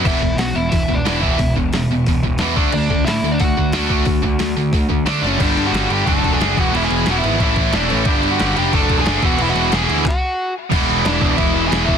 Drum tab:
CC |x-------|--------|x-------|--------|
HH |--o-o-o-|o-o-o-o-|--o-o-o-|o-o-o-o-|
CP |--------|--------|--------|--------|
SD |--o---o-|--o---o-|--o---o-|--o---oo|
BD |oo--oo-o|oo--oo-o|-o--oo-o|oo--oo--|

CC |xxxxxxxx|xxxxxxxx|xxxxxxxx|xxxx----|
HH |--------|--------|--------|--------|
CP |--------|--------|--------|----x---|
SD |--o---o-|--o---o-|--o---o-|--o-----|
BD |o---oo-o|----oo--|o---oo-o|----o---|

CC |x-x-x-x-|
HH |--------|
CP |--------|
SD |--o---o-|
BD |o--oo--o|